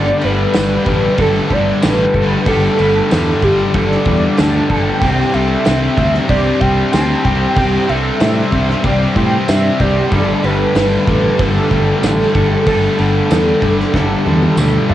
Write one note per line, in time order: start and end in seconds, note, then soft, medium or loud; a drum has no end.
0.00 0.11 G1 loud
0.00 0.22 G2 loud
0.00 0.22 D3 loud
0.00 0.23 G3 loud
0.00 0.52 G3 loud
0.00 0.23 A3 loud
0.00 0.21 D4 loud
0.00 2.79 D4 loud
0.00 3.10 D4 loud
0.00 0.19 G4 loud
0.00 0.27 A4 loud
0.00 0.26 D5 loud
0.20 0.55 G2 medium
0.20 0.54 D3 loud
0.20 0.55 G3 loud
0.20 0.54 A3 medium
0.20 0.55 D4 medium
0.20 0.55 G4 medium
0.20 0.87 B4 medium
0.20 crash medium
0.24 0.44 G1 medium
0.24 1.22 B4 loud
0.52 0.88 G2 medium
0.52 0.87 D3 medium
0.52 1.16 G3 medium
0.52 0.88 G3 loud
0.52 0.88 A3 medium
0.52 0.86 D4 medium
0.52 0.84 G4 medium
0.52 snare loud
0.52 tambourine medium
0.52 crash medium
0.57 0.76 G1 medium
0.85 1.07 A1 medium
0.85 1.18 G2 medium
0.85 1.18 D3 medium
0.85 1.16 A3 medium
0.85 1.18 D4 medium
0.85 1.19 G4 medium
0.85 kick medium
0.85 crash medium
0.89 1.19 G3 medium
1.16 1.39 G1 medium
1.16 1.49 G2 medium
1.16 1.50 D3 loud
1.16 1.79 G3 medium
1.16 1.52 G3 loud
1.16 1.50 A3 loud
1.16 1.50 D4 loud
1.16 1.47 G4 loud
1.16 1.83 A4 medium
1.16 kick loud
1.16 crash medium
1.20 1.54 A4 medium
1.48 1.71 G1 medium
1.48 1.81 G2 medium
1.48 1.81 D3 medium
1.48 1.79 A3 medium
1.48 1.82 D4 medium
1.48 1.82 G4 medium
1.48 kick medium
1.48 crash medium
1.52 1.82 G3 loud
1.52 1.86 D5 loud
1.79 2.14 G2 medium
1.79 2.14 D3 medium
1.79 2.44 G3 medium
1.79 2.15 G3 loud
1.79 2.15 A3 medium
1.79 2.14 D4 medium
1.79 2.12 G4 medium
1.79 tambourine medium
1.79 crash medium
1.83 2.04 A1 medium
1.83 2.48 B4 loud
1.83 snare loud
2.13 2.35 G1 medium
2.13 2.46 G2 medium
2.13 2.46 D3 medium
2.13 2.48 G3 loud
2.13 2.44 A3 medium
2.13 2.46 D4 medium
2.13 2.48 G4 medium
2.13 2.47 A4 medium
2.13 kick medium
2.13 crash medium
2.44 2.67 G1 loud
2.44 2.78 G2 medium
2.44 2.78 D3 loud
2.44 3.09 G3 medium
2.44 2.79 A3 loud
2.44 2.78 D4 loud
2.44 2.76 G4 loud
2.44 2.79 A4 medium
2.44 kick loud
2.44 crash medium
2.48 2.80 G3 loud
2.48 3.45 A4 loud
2.77 3.00 G1 medium
2.77 3.09 G2 medium
2.77 3.10 D3 medium
2.77 3.11 G3 loud
2.77 3.10 A3 medium
2.77 3.12 D4 medium
2.77 3.13 G4 medium
2.77 3.43 B4 medium
2.77 crash medium
3.10 3.32 E2 medium
3.10 3.41 G2 medium
3.10 3.41 D3 medium
3.10 3.74 G3 medium
3.10 3.43 G3 medium
3.10 3.44 A3 medium
3.10 3.44 D4 medium
3.10 3.42 G4 medium
3.10 snare loud
3.10 tambourine medium
3.10 crash medium
3.42 3.63 G1 medium
3.42 3.73 G2 medium
3.42 3.74 D3 medium
3.42 3.75 G3 medium
3.42 3.74 A3 medium
3.42 3.76 D4 medium
3.42 3.76 G4 medium
3.42 3.78 G4 loud
3.42 kick medium
3.42 crash medium
3.74 3.95 G1 medium
3.74 4.05 G2 medium
3.74 4.05 D3 medium
3.74 4.37 G3 medium
3.74 4.07 G3 loud
3.74 4.09 A3 medium
3.74 4.07 D4 medium
3.74 4.06 G4 loud
3.74 4.38 A4 medium
3.74 4.41 D5 loud
3.74 kick loud
3.74 crash medium
3.91 snare soft
4.05 4.26 E2 medium
4.05 4.37 G2 medium
4.05 4.38 D3 medium
4.05 4.39 G3 medium
4.05 4.39 D4 medium
4.05 4.40 G4 medium
4.05 kick medium
4.05 crash medium
4.10 4.37 A3 medium
4.37 4.59 D2 medium
4.37 4.69 G2 medium
4.37 4.70 D3 loud
4.37 5.01 G3 medium
4.37 4.71 G3 medium
4.37 4.71 A3 medium
4.37 4.70 D4 medium
4.37 4.68 G4 medium
4.37 4.72 A5 loud
4.37 snare loud
4.37 tambourine medium
4.37 crash medium
4.68 4.91 G1 medium
4.68 5.00 G2 medium
4.68 5.01 D3 medium
4.68 5.02 G3 loud
4.68 5.01 A3 medium
4.68 5.02 D4 medium
4.68 5.03 G4 medium
4.68 5.02 A4 medium
4.68 5.35 G5 loud
4.68 kick medium
4.68 crash medium
5.00 5.22 C2 loud
5.00 5.70 C3 medium
5.00 5.33 C3 medium
5.00 5.64 G3 medium
5.00 5.33 G3 loud
5.00 5.36 C4 medium
5.00 5.34 C4 loud
5.00 5.34 D4 loud
5.00 5.37 G4 medium
5.00 5.32 G4 loud
5.00 kick loud
5.00 crash medium
5.33 5.55 C2 medium
5.33 5.65 C3 medium
5.33 5.66 G3 medium
5.33 5.66 C4 medium
5.33 5.66 D4 medium
5.33 5.68 G4 medium
5.33 5.98 A4 medium
5.33 6.29 E5 loud
5.33 crash medium
5.65 5.87 C2 medium
5.65 5.97 C3 medium
5.65 6.28 G3 medium
5.65 5.97 G3 medium
5.65 6.00 C4 medium
5.65 5.97 C4 loud
5.65 5.99 D4 medium
5.65 5.96 G4 medium
5.65 snare loud
5.65 tambourine medium
5.65 crash medium
5.97 6.18 D2 medium
5.97 6.27 C3 medium
5.97 6.29 G3 medium
5.97 6.28 C4 medium
5.97 6.29 D4 medium
5.97 6.30 G4 medium
5.97 kick medium
5.97 crash medium
6.14 snare soft
6.27 6.50 C2 medium
6.27 6.92 C3 medium
6.27 6.59 C3 medium
6.27 6.91 G3 medium
6.27 6.60 G3 loud
6.27 6.62 C4 medium
6.27 6.60 C4 loud
6.27 6.62 D4 loud
6.27 7.26 G4 medium
6.27 6.60 G4 loud
6.27 6.62 D5 medium
6.27 kick loud
6.27 crash medium
6.60 6.82 C2 medium
6.60 6.91 C3 medium
6.60 6.92 G3 medium
6.60 6.92 C4 medium
6.60 6.93 D4 medium
6.60 6.95 G4 medium
6.60 6.93 G5 loud
6.60 kick medium
6.60 crash medium
6.91 7.14 D2 medium
6.91 7.23 C3 medium
6.91 7.57 G3 medium
6.91 7.24 G3 medium
6.91 7.26 C4 medium
6.91 7.23 C4 medium
6.91 7.26 D4 medium
6.91 7.24 G4 medium
6.91 7.25 A5 loud
6.91 snare loud
6.91 tambourine loud
6.91 crash medium
7.24 7.45 C2 medium
7.24 7.55 C3 medium
7.24 7.56 G3 medium
7.24 7.56 C4 loud
7.24 7.56 C4 medium
7.24 7.58 D4 medium
7.24 7.59 G4 medium
7.24 7.57 G4 medium
7.24 7.90 G5 loud
7.24 kick medium
7.24 crash medium
7.56 7.77 C2 loud
7.56 8.20 C3 medium
7.56 7.87 C3 loud
7.56 7.88 G3 loud
7.56 8.18 G3 loud
7.56 7.88 C4 loud
7.56 7.90 C4 loud
7.56 7.89 D4 loud
7.56 7.89 G4 medium
7.56 7.87 G4 loud
7.56 kick loud
7.56 crash medium
7.88 8.10 C2 medium
7.88 8.20 C3 medium
7.88 8.21 G3 medium
7.88 8.20 C4 medium
7.88 8.19 C4 medium
7.88 8.21 D4 medium
7.88 8.22 G4 medium
7.88 8.53 A4 medium
7.88 8.85 E5 loud
7.88 crash medium
8.19 8.41 A2 medium
8.19 8.52 C3 medium
8.19 8.83 G3 medium
8.19 8.53 G3 medium
8.19 8.52 C4 medium
8.19 8.53 C4 medium
8.19 8.52 D4 medium
8.19 8.49 G4 medium
8.19 snare loud
8.19 tambourine medium
8.19 crash medium
8.50 8.73 C2 medium
8.50 8.83 C3 medium
8.50 8.85 G3 medium
8.50 8.84 C4 medium
8.50 8.85 D4 medium
8.50 8.86 G4 medium
8.50 kick medium
8.50 crash medium
8.54 8.84 C4 medium
8.70 snare soft
8.83 9.05 C2 medium
8.83 9.48 C3 medium
8.83 9.16 C3 loud
8.83 9.46 G3 medium
8.83 9.17 G3 loud
8.83 9.16 C4 loud
8.83 9.16 D4 medium
8.83 9.81 G4 medium
8.83 9.14 G4 loud
8.83 9.18 D5 medium
8.83 kick loud
8.83 crash medium
9.14 9.36 A2 medium
9.14 9.47 C3 medium
9.14 9.48 G3 medium
9.14 9.46 C4 medium
9.14 9.48 C4 medium
9.14 9.49 D4 medium
9.14 9.49 G4 medium
9.14 9.48 G5 loud
9.14 kick medium
9.14 crash medium
9.47 9.69 G2 medium
9.47 9.80 C3 medium
9.47 10.10 G3 medium
9.47 9.81 G3 medium
9.47 9.80 C4 medium
9.47 9.81 C4 loud
9.47 9.80 D4 medium
9.47 9.78 G4 medium
9.47 9.82 E5 loud
9.47 snare loud
9.47 tambourine loud
9.47 crash medium
9.78 10.00 C2 medium
9.78 10.11 C3 medium
9.78 10.14 G3 medium
9.78 10.11 C4 medium
9.78 10.13 D4 medium
9.78 10.14 G4 medium
9.78 10.13 G4 medium
9.78 10.46 D5 loud
9.78 kick medium
9.78 crash medium
9.82 10.11 C4 loud
10.09 10.32 G1 loud
10.09 10.74 G2 medium
10.09 10.74 G3 loud
10.09 10.45 A3 medium
10.09 10.44 D4 medium
10.09 10.43 A4 medium
10.09 kick loud
10.09 crash medium
10.14 10.45 G2 loud
10.14 10.44 D3 loud
10.14 10.46 G3 loud
10.14 10.42 A4 loud
10.42 10.64 G1 medium
10.42 10.75 G2 medium
10.42 10.75 D3 loud
10.42 10.76 G3 loud
10.42 10.75 A3 medium
10.42 10.77 D4 medium
10.42 10.77 A4 medium
10.42 11.07 B4 medium
10.42 11.41 B4 loud
10.42 crash medium
10.74 10.96 G1 medium
10.74 11.07 G2 medium
10.74 11.06 D3 loud
10.74 11.38 G3 medium
10.74 11.08 G3 loud
10.74 11.09 A3 medium
10.74 11.07 D4 medium
10.74 11.06 A4 medium
10.74 snare loud
10.74 tambourine medium
10.74 crash medium
11.06 11.28 A1 medium
11.06 11.38 G2 medium
11.06 11.37 D3 medium
11.06 11.39 G3 medium
11.06 11.38 A3 medium
11.06 11.40 D4 medium
11.06 11.40 A4 medium
11.06 kick medium
11.06 crash medium
11.38 11.59 G1 loud
11.38 11.70 G2 medium
11.38 11.69 D3 loud
11.38 12.01 G3 medium
11.38 11.71 G3 loud
11.38 11.72 A3 loud
11.38 11.72 D4 loud
11.38 12.66 A4 loud
11.38 12.03 A4 medium
11.38 11.69 A4 loud
11.38 kick loud
11.38 crash medium
11.70 11.92 G1 medium
11.70 12.02 G2 medium
11.70 12.02 D3 medium
11.70 12.03 G3 medium
11.70 12.02 A3 medium
11.70 12.04 D4 medium
11.70 12.04 A4 medium
11.70 kick medium
11.70 crash medium
12.02 12.23 A1 medium
12.02 12.34 G2 medium
12.02 12.34 D3 loud
12.02 12.64 G3 medium
12.02 12.35 G3 medium
12.02 12.36 A3 medium
12.02 12.35 D4 medium
12.02 12.32 A4 medium
12.02 snare loud
12.02 tambourine loud
12.02 crash medium
12.33 12.55 G1 medium
12.33 12.65 G2 medium
12.33 12.66 D3 loud
12.33 12.66 G3 medium
12.33 12.64 A3 medium
12.33 12.65 D4 medium
12.33 12.66 A4 medium
12.33 kick medium
12.33 crash medium
12.65 12.87 G1 loud
12.65 12.98 G2 loud
12.65 12.99 D3 loud
12.65 13.26 G3 medium
12.65 12.98 G3 loud
12.65 12.98 A3 loud
12.65 12.97 D4 loud
12.65 14.85 A4 medium
12.65 12.99 A4 medium
12.65 12.95 A4 loud
12.65 kick loud
12.65 crash medium
12.96 13.20 G1 medium
12.96 13.30 G2 medium
12.96 13.30 G3 loud
12.96 13.28 A3 medium
12.96 13.29 D4 medium
12.96 13.30 A4 medium
12.96 13.63 B4 medium
12.96 crash medium
13.00 13.30 D3 medium
13.28 13.61 G2 medium
13.28 13.61 D3 medium
13.28 13.91 G3 medium
13.28 13.62 G3 medium
13.28 13.63 A3 medium
13.28 13.61 D4 medium
13.28 13.59 A4 medium
13.28 tambourine loud
13.28 crash medium
13.32 13.52 E2 medium
13.32 snare loud
13.60 13.82 G1 medium
13.60 13.94 G2 medium
13.60 13.94 D3 medium
13.60 13.95 G3 medium
13.60 13.92 A3 medium
13.60 13.93 D4 medium
13.60 13.94 A4 medium
13.60 kick medium
13.60 crash medium
13.80 snare soft
13.92 14.14 G1 loud
13.92 14.25 G2 medium
13.92 14.26 D3 loud
13.92 14.55 G3 medium
13.92 14.27 A3 loud
13.92 14.25 D4 loud
13.92 14.58 A4 medium
13.92 14.23 A4 loud
13.92 kick loud
13.92 snare medium
13.96 14.26 G3 loud
14.24 14.46 E2 medium
14.24 14.57 G2 medium
14.24 14.56 D3 medium
14.24 14.57 G3 medium
14.24 14.56 A3 medium
14.24 14.58 D4 medium
14.24 14.58 A4 medium
14.24 high tom medium
14.42 high tom medium
14.56 14.77 D2 medium
14.56 14.88 G2 medium
14.56 14.89 D3 medium
14.56 14.94 G3 medium
14.56 14.89 G3 medium
14.56 14.90 A3 medium
14.56 14.89 D4 medium
14.56 14.87 A4 medium
14.56 mid tom medium
14.56 tambourine loud
14.88 14.94 G1 medium
14.88 14.94 G2 medium
14.88 14.94 D3 medium
14.88 14.94 G3 medium
14.88 14.94 A3 medium
14.88 14.94 D4 medium
14.88 14.94 A4 medium
14.88 floor tom loud